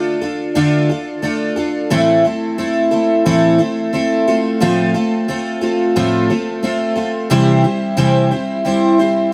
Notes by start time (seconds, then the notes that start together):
Already playing: A3 D4 F4 A4
0.21 D4 F4 A4
0.55 D3 A3 D4 F4 A4
0.89 D4 F4 A4
1.22 A3 D4 F4 A4
1.56 D4 F4 A4
1.90 A2 E3 A3 C4 E4 A4
2.25 A3 C4 E4 A4
2.58 A3 C4 E4 A4
2.91 A3 C4 E4 A4
3.26 A2 E3 A3 C4 E4 A4
3.58 A3 C4 E4 A4
3.93 A3 C4 E4 A4
4.28 A3 C4 F4 A4
4.60 A2 F3 A3 C4 F4 A4
4.94 A3 C4 F4 A4
5.28 A3 C4 F4 A4
5.61 A3 C4 F4 A4
5.96 A2 F3 A3 C4 F4 A4
6.30 A3 C4 F4 A4
6.63 A3 C4 F4 A4
6.96 A3 C4 F4 A4
7.30 C3 E3 G3 C4 E4 C5
7.64 G3 C4 E4 C5
7.97 C3 E3 G3 C4 E4 C5
8.31 G3 C4 E4 C5
8.65 G3 C4 E4 C5
8.99 G3 C4 E4 C5